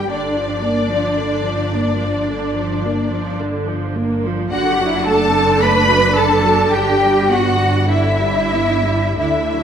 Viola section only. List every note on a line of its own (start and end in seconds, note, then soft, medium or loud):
0.09 0.34 D3 medium
0.09 4.48 D4 medium
0.37 0.64 F3 medium
0.63 0.90 A#3 medium
0.90 1.18 F3 medium
1.18 1.46 D3 medium
1.45 1.73 F3 medium
1.73 2.02 A#3 medium
2.01 2.29 F3 medium
2.29 2.55 D3 medium
2.57 2.85 F3 medium
2.86 3.13 A#3 medium
3.12 3.40 F3 medium
3.41 3.68 D3 medium
3.67 3.95 F3 medium
3.96 4.24 A#3 medium
4.24 4.52 F3 medium
4.51 4.78 D3 medium
4.51 9.15 D4 medium
4.82 5.09 F#3 medium
5.07 5.35 A3 medium
5.34 5.62 C4 medium
5.62 5.90 A3 medium
5.89 6.17 F#3 medium
6.16 6.45 D3 medium
6.44 6.73 F#3 medium
6.72 6.99 D3 medium
7.00 7.30 G3 medium
7.30 7.60 B3 medium
7.58 7.89 G3 medium
7.89 8.21 D3 medium
8.20 8.52 G3 medium
8.53 8.86 B3 medium
8.84 9.19 G3 medium
9.18 9.51 D3 medium
9.18 9.63 D4 medium
9.54 9.63 F#3 medium